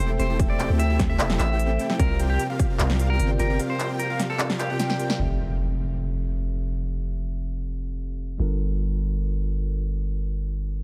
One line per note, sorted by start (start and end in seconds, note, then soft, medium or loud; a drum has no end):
0.00 0.18 E1 medium
0.00 0.09 A3 medium
0.00 0.27 C4 medium
0.00 0.27 E4 medium
0.00 0.27 G4 medium
0.00 0.09 A4 medium
0.00 0.27 A4 medium
0.00 0.10 C5 medium
0.00 0.10 E5 medium
0.00 0.11 G5 loud
0.00 0.27 G5 medium
0.09 0.17 A3 medium
0.09 0.17 A4 medium
0.09 0.17 C5 medium
0.09 0.17 E5 medium
0.09 0.18 G5 medium
0.19 0.68 E1 medium
0.19 0.36 A3 medium
0.19 0.37 A4 medium
0.19 0.39 C5 loud
0.19 0.37 C5 medium
0.19 0.37 E5 medium
0.19 0.38 G5 medium
0.19 closed hi-hat medium
0.30 0.37 C4 medium
0.30 0.37 E4 medium
0.30 0.37 G4 medium
0.30 0.37 A4 medium
0.30 0.37 G5 loud
0.37 1.16 A3 medium
0.37 0.57 E4 medium
0.37 0.57 G4 medium
0.37 1.17 A4 medium
0.37 0.57 A4 medium
0.37 1.17 C5 medium
0.37 0.57 E5 medium
0.37 1.18 E5 medium
0.37 1.18 G5 medium
0.37 kick loud
0.37 closed hi-hat medium
0.50 0.69 D5 medium
0.60 0.87 C4 loud
0.60 0.87 E4 medium
0.60 0.87 G4 medium
0.60 0.87 A4 medium
0.60 0.87 G5 loud
0.60 clap medium
0.60 closed hi-hat medium
0.70 1.21 D2 medium
0.79 0.99 E5 loud
0.79 closed hi-hat medium
0.90 1.07 C4 loud
0.90 1.07 E4 medium
0.90 1.07 G4 medium
0.90 1.07 A4 medium
0.90 1.07 E5 loud
0.99 kick loud
0.99 snare medium
0.99 closed hi-hat medium
1.10 1.27 C4 medium
1.10 1.27 E4 medium
1.10 1.27 G4 medium
1.10 1.27 A4 medium
1.10 1.29 E5 loud
1.10 1.27 E5 medium
1.18 1.38 E1 loud
1.18 1.67 A3 medium
1.18 1.67 A4 medium
1.18 1.68 C5 medium
1.18 1.68 E5 medium
1.18 1.69 G5 loud
1.18 clap loud
1.18 closed hi-hat medium
1.30 1.48 C4 medium
1.30 1.48 E4 medium
1.30 1.48 G4 medium
1.30 1.48 A4 medium
1.30 1.48 E5 loud
1.30 snare medium
1.39 1.78 A1 medium
1.39 1.92 E5 medium
1.39 clap medium
1.39 closed hi-hat medium
1.50 1.87 C4 medium
1.50 1.87 E4 medium
1.50 1.87 G4 medium
1.50 1.87 A4 medium
1.50 1.87 G5 medium
1.59 closed hi-hat medium
1.69 1.77 A3 medium
1.69 1.77 A4 medium
1.69 1.77 C5 medium
1.69 1.77 E5 medium
1.69 1.78 G5 medium
1.79 1.97 A3 medium
1.79 1.97 A4 medium
1.79 1.97 C5 medium
1.79 1.97 E5 medium
1.79 1.98 G5 medium
1.79 closed hi-hat medium
1.90 1.97 C4 loud
1.90 1.97 E4 medium
1.90 1.97 G4 medium
1.90 1.97 A4 medium
1.90 1.97 G5 loud
1.90 snare medium
1.98 2.38 C2 loud
1.98 2.76 C3 medium
1.98 2.77 C4 medium
1.98 2.17 C4 medium
1.98 2.17 F4 medium
1.98 2.77 F4 medium
1.98 2.17 G4 medium
1.98 2.19 A#4 loud
1.98 2.17 A#4 medium
1.98 2.17 F5 medium
1.98 kick loud
1.98 closed hi-hat medium
2.19 2.47 C4 loud
2.19 2.47 F4 medium
2.19 2.47 G4 medium
2.19 2.47 A#4 medium
2.19 2.47 G5 loud
2.19 closed hi-hat medium
2.30 2.43 G4 medium
2.39 closed hi-hat medium
2.50 2.67 C4 loud
2.50 2.67 F4 medium
2.50 2.67 G4 medium
2.50 2.67 A#4 medium
2.50 2.67 F5 loud
2.59 kick loud
2.59 closed hi-hat medium
2.70 2.87 C4 medium
2.70 2.87 F4 medium
2.70 2.87 G4 medium
2.70 2.87 A#4 medium
2.70 2.87 F5 medium
2.77 3.18 C2 loud
2.77 3.27 C3 medium
2.77 3.27 C4 medium
2.77 3.28 F4 medium
2.77 3.28 A#4 medium
2.77 3.29 D5 loud
2.77 clap loud
2.77 closed hi-hat medium
2.90 3.08 C4 loud
2.90 3.08 F4 medium
2.90 3.08 G4 medium
2.90 3.08 A#4 medium
2.90 3.08 F5 loud
2.90 snare medium
2.99 closed hi-hat medium
3.10 3.47 C4 medium
3.10 3.47 F4 medium
3.10 3.47 G4 medium
3.10 3.47 A#4 medium
3.10 3.29 A#4 loud
3.10 3.47 G5 medium
3.19 3.38 G1 medium
3.19 closed hi-hat medium
3.29 3.37 C3 medium
3.29 3.37 C4 medium
3.29 3.37 F4 medium
3.29 3.37 A#4 medium
3.29 3.38 D5 medium
3.38 3.60 G1 medium
3.38 3.56 C3 medium
3.38 3.57 C4 medium
3.38 3.57 F4 medium
3.38 3.59 A#4 loud
3.38 3.57 A#4 medium
3.38 3.58 D5 medium
3.38 closed hi-hat medium
3.50 3.57 C4 medium
3.50 3.57 F4 medium
3.50 3.57 G4 medium
3.50 3.57 A#4 medium
3.50 3.57 G5 loud
3.57 4.36 C3 medium
3.57 4.37 C4 medium
3.57 3.77 C4 medium
3.57 4.37 F4 medium
3.57 3.77 F4 medium
3.57 3.77 G4 medium
3.57 3.77 A#4 medium
3.57 4.38 A#4 medium
3.57 3.77 F5 medium
3.57 closed hi-hat medium
3.61 4.38 D5 medium
3.70 3.89 C5 loud
3.80 4.07 C4 loud
3.80 4.07 F4 medium
3.80 4.07 G4 medium
3.80 4.07 A#4 medium
3.80 4.07 G5 loud
3.80 clap medium
3.80 closed hi-hat medium
4.00 4.19 A#4 loud
4.00 closed hi-hat medium
4.10 4.27 C4 loud
4.10 4.27 F4 medium
4.10 4.27 G4 medium
4.10 4.27 A#4 loud
4.10 4.27 F5 loud
4.20 snare medium
4.20 closed hi-hat medium
4.30 4.47 C4 medium
4.30 4.47 F4 medium
4.30 4.47 G4 medium
4.30 4.49 A4 loud
4.30 4.47 A#4 medium
4.30 4.47 F5 medium
4.38 4.87 C3 medium
4.38 4.87 C4 medium
4.38 4.88 F4 medium
4.38 4.88 A#4 medium
4.38 clap loud
4.38 closed hi-hat medium
4.42 4.89 D5 loud
4.50 4.68 C4 medium
4.50 4.68 F4 medium
4.50 4.68 G4 medium
4.50 4.68 A#4 medium
4.50 4.68 F5 loud
4.50 snare medium
4.59 5.12 G4 medium
4.59 clap medium
4.59 closed hi-hat medium
4.70 4.97 C4 loud
4.70 4.97 F4 medium
4.70 4.97 G4 medium
4.70 4.97 A#4 medium
4.70 4.97 G5 loud
4.80 snare medium
4.80 closed hi-hat medium
4.89 4.97 C3 medium
4.89 4.97 C4 medium
4.89 4.97 F4 medium
4.89 4.97 A#4 medium
4.89 4.98 D5 medium
4.89 snare medium
4.99 5.17 C3 medium
4.99 5.17 C4 medium
4.99 5.17 F4 medium
4.99 5.17 G4 medium
4.99 5.17 A#4 medium
4.99 5.18 D5 medium
4.99 5.17 G5 medium
4.99 closed hi-hat medium
5.10 snare medium
5.18 8.38 F1 medium
5.18 8.36 F3 medium
5.18 8.37 C4 medium
5.18 8.37 G4 medium
5.18 8.38 A4 medium
5.18 8.38 E5 medium
5.18 impact medium
8.38 10.83 G1 medium
8.38 10.83 G3 medium
8.38 10.83 D4 medium
8.38 10.83 F4 medium
8.38 10.83 A4 medium
8.38 10.83 A#4 medium